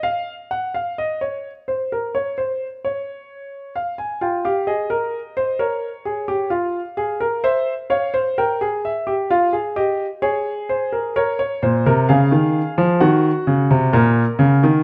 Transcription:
<<
  \new Staff \with { instrumentName = "Grand piano" } { \time 4/4 \key bes \minor \tempo 4 = 65 << { f''8 ges''16 f''16 ees''16 des''8 c''16 bes'16 des''16 c''8 des''4 | f''16 aes''16 g''16 f''16 ees''4 des''4 f''4 | e''8 f''8 g''8 e''8 f''8 ees''8 des''8 c''16 bes'16 | des''4 f''4 ges''2 | } \\ { r1 | r8 f'16 g'16 aes'16 bes'8 c''16 bes'8 aes'16 g'16 f'8 aes'16 bes'16 | c''8 des''16 c''16 bes'16 aes'8 g'16 f'16 aes'16 g'8 aes'4 | bes'16 des''16 c''16 bes'16 aes'4 ges'4 bes'4 | } >> }
  \new Staff \with { instrumentName = "Grand piano" } { \clef bass \time 4/4 \key bes \minor r1 | r1 | r1 | r8 bes,16 c16 des16 ees8 f16 ees8 des16 c16 bes,8 des16 ees16 | }
>>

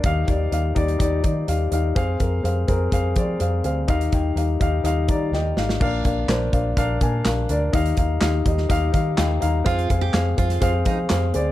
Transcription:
<<
  \new Staff \with { instrumentName = "Grand piano" } { \time 4/4 \key ees \major \tempo 4 = 125 <ees' g' f''>8 <ees' g' d''>8 <ees' g' f''>8 <ees' g' d''>8 <ees' g' d''>8 <ees' g' d''>8 <ees' g' f''>8 <ees' g' f''>8 | <c' aes' f''>8 <c' aes' bes'>8 <c' aes' f''>8 <c' aes' bes'>8 <c' aes' f''>8 <c' aes' d''>8 <c' aes' f''>8 <c' aes' f''>8 | <ees' g' f''>8 <ees' g' g''>8 <ees' g' f''>8 <ees' g' f''>8 <ees' g' f''>8 <ees' g' d'' bes''>8 <ees' g' ees'' g''>8 <ees' g' ees'' f''>8 | <d' bes' f''>8 <d' bes' f''>8 <d' bes' c''>8 <d' bes' f''>8 <d' bes' f''>8 <d' bes' aes''>8 <d' bes' f''>8 <d' bes' d''>8 |
<ees' g' f''>8 <ees' g' f''>8 <ees' g' f''>8 <ees' g' ees''>8 <ees' g' f''>8 <ees' g' ees'' f''>8 <ees' g' f'' g''>8 <ees' g' f'' bes''>8 | <c' aes' f''>8 <c' aes' f''>8 <c' aes' f''>8 <c' aes' f''>8 <c' aes' f''>8 <c' aes' f''>8 <c' aes' f''>8 <c' aes' d''>8 | }
  \new Staff \with { instrumentName = "Grand piano" } { \clef bass \time 4/4 \key ees \major ees4. r2 r8 | r1 | ees4. r2 r8 | bes,4. r2 r8 |
ees4. r2 r8 | r1 | }
  \new Staff \with { instrumentName = "Steel-string acoustic guitar" } { \time 4/4 \key ees \major r1 | r1 | r1 | r1 |
r1 | f'8 r16 g'16 r8 f'8. r16 ees'16 r4 r16 | }
  \new Staff \with { instrumentName = "Fingered electric bass" } { \clef bass \time 4/4 \key ees \major ees,8 ees,8 ees,8 ees,8 ees,8 ees8 ees,8 ees,8 | f,8 f,8 f,8 f,8 f,8 f8 f,8 d,8 | ees,8 ees,8 ees,8 ees,8 ees,8 ees8 ees,8 aes,,8 | bes,,8 bes,,8 bes,,8 bes,,8 bes,,8 bes,8 bes,,8 d,8 |
ees,8 ees,8 ees,8 ees,8 ees,8 ees8 ees,8 ees,8 | r8 f,8 f,8 f,8 f,8 f8 f,8 d,8 | }
  \new DrumStaff \with { instrumentName = "Drums" } \drummode { \time 4/4 <hh bd>8 <hh bd>8 hh8 <hh bd>16 hh16 <hh bd>8 <hh bd>8 hh8 hh8 | <hh bd>8 <hh bd>8 hh8 <hh bd>8 <hh bd>8 <hh bd>8 hh8 hh8 | <hh bd>16 hh16 <hh bd>8 hh8 <hh bd>8 hh8 <hh bd>8 sn8 sn16 sn16 | <cymc bd>8 <hh bd>8 <hc hh sn>8 <hh bd>8 <hh bd>8 <hh bd>8 <hc hh sn>8 hh8 |
<hh bd>16 hh16 <hh bd>8 <hc hh sn>8 <hh bd>16 sn16 <hh bd>8 <hh bd>8 <hc hh sn>8 hh8 | <hh bd>16 hh16 <hh bd>8 <hc hh sn>8 <hh bd>16 <hh sn>16 <hh bd>8 <hh bd>8 <hc hh sn>8 hh8 | }
>>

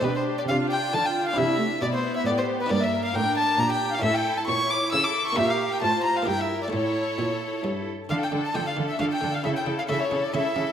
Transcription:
<<
  \new Staff \with { instrumentName = "Violin" } { \time 3/4 \key c \major \tempo 4 = 134 b'16 c''8 d''16 f''8 g''8 a''16 g''8 f''16 | e''4 d''16 c''8 e''16 d''16 c''8 b'16 | \key d \minor d''16 e''8 f''16 g''8 a''8 bes''16 g''8 f''16 | e''16 g''8 a''16 cis'''8 d'''8 e'''16 d'''8 cis'''16 |
e''16 f''8 g''16 a''8 bes''16 f''16 g''16 e''8 d''16 | cis''2 r4 | f''16 g''8 a''16 g''16 f''8 e''16 f''16 g''8 f''16 | e''16 g''8 f''16 e''16 cis''8 d''16 e''4 | }
  \new Staff \with { instrumentName = "Violin section" } { \time 3/4 \key c \major b'16 c''8 d''16 f''8 g''8 a''16 g''8 f''16 | e''4 d''16 c''8 e''16 d''16 c''8 b'16 | \key d \minor d''16 e''8 f''16 g''8 a''8 bes''16 g''8 f''16 | e''16 g''8 a''16 cis'''8 d'''8 e'''16 d'''8 cis'''16 |
e''16 f''8 g''16 a''8 bes''16 f''16 g''16 e''8 d''16 | cis''2 r4 | f''16 g''8 a''16 g''16 f''8 e''16 f''16 g''8 f''16 | e''16 g''8 f''16 e''16 cis''8 d''16 e''4 | }
  \new Staff \with { instrumentName = "Violin section" } { \time 3/4 \key c \major g'4 f'4 d'4~ | d'4 e'4 g'4 | \key d \minor bes'2 g'4 | a'4 cis''4 a'4 |
bes'4 c''4 bes'4 | a'2~ a'8 r8 | a'8 a'8 a'8 a'8 a'8 a'8 | a'8 a'8 a'8 a'8 a'8 a'8 | }
  \new Staff \with { instrumentName = "Viola section" } { \time 3/4 \key c \major d'4 d'4 f'4 | e'8 a8 b2 | \key d \minor bes4 d'2 | e'2. |
g'4 f'4 e'4 | e'2~ e'8 r8 | d'8 d'8 d'8 d'8 d'8 d'8 | e'8 e'8 e'8 e'8 e'8 e'8 | }
  \new Staff \with { instrumentName = "Harpsichord" } { \time 3/4 \key c \major <d' g'>2. | <c' e' g'>2. | \key d \minor <d' e' bes'>2. | <cis' e' a'>2. |
<bes d' f'>2 <bes e' g'>4 | <a e'>2. | r4 <a d' f'>4 <a d' f'>4 | r4 <a e' a'>4 <a e' a'>4 | }
  \new Staff \with { instrumentName = "Harpsichord" } { \clef bass \time 3/4 \key c \major b,4 c4 d4 | c4 b,4 a,4 | \key d \minor g,4 a,4 bes,4 | a,4 bes,4 cis4 |
bes,4 a,4 g,4 | a,4 bes,4 g,4 | d8 d8 d8 d8 d8 d8 | cis8 cis8 cis8 cis8 cis8 cis8 | }
  \new Staff \with { instrumentName = "Cello section" } { \clef bass \time 3/4 \key c \major b,4 c4 d4 | c4 b,4 a,4 | \key d \minor g,4 a,4 bes,4 | a,4 bes,4 cis4 |
bes,4 a,4 g,4 | a,4 bes,4 g,4 | d8 d8 d8 d8 d8 d8 | cis8 cis8 cis8 cis8 cis8 cis8 | }
>>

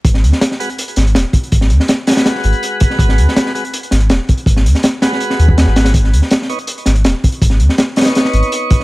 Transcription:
<<
  \new Staff \with { instrumentName = "Tonewheel organ" } { \time 4/4 \key gis \minor \tempo 4 = 163 r4. <gis fis' b'>16 r2 r16 | r4. <gis fis' b'>2~ <gis fis' b'>8~ | <gis fis' b'>4. <gis fis' b'>16 r2 r16 | r4. <gis fis' b'>2~ <gis fis' b'>8 |
r4. <b dis' cis''>16 r2 r16 | r4. <b dis' cis''>2~ <b dis' cis''>8 | }
  \new Staff \with { instrumentName = "Sub bass" } { \clef bass \time 4/4 \key gis \minor gis,,8 dis,16 r4. r16 gis,,8 dis,,16 r8. | gis,,8 dis,16 r4. r16 gis,,16 r4 r16 | gis,,8 dis,16 r4. r16 gis,,8 dis,,16 r8. | gis,,8 dis,16 r4. r16 dis,8. gis,,8. |
gis,,8 dis,16 r4. r16 gis,,8 dis,,16 r8. | gis,,8 dis,16 r4. r16 gis,,16 r4 r16 | }
  \new DrumStaff \with { instrumentName = "Drums" } \drummode { \time 4/4 <hh bd>16 sn16 hh16 sn16 <hh sn>16 sn16 hh16 hh16 hh16 hh16 <hh sn>16 hh16 <hh sn>8 <hh bd>16 hh16 | <hh bd>16 sn16 hh16 sn16 <hh sn>8 <hh sn>32 <hh sn>32 <hh sn>16 <hh sn>16 sn16 hh16 hh16 hh8 <hh bd>16 sn16 | <hh bd>16 sn16 hh16 sn16 <hh sn>16 sn16 hh16 hh16 hh16 hh16 <hh sn>16 hh16 <hh sn>8 <hh bd>16 hh16 | <hh bd>16 sn16 hh16 sn16 <hh sn>8 <hh sn>16 sn16 hh16 sn16 hh16 bd16 <hh sn>16 sn16 <hh sn>16 <hh sn>16 |
<hh bd>16 sn16 hh16 sn16 <hh sn>16 sn16 hh16 hh16 hh16 hh16 <hh sn>16 hh16 <hh sn>8 <hh bd>16 hh16 | <hh bd>16 sn16 hh16 sn16 <hh sn>8 <hh sn>32 <hh sn>32 <hh sn>16 <hh sn>16 sn16 hh16 hh16 hh8 <hh bd>16 sn16 | }
>>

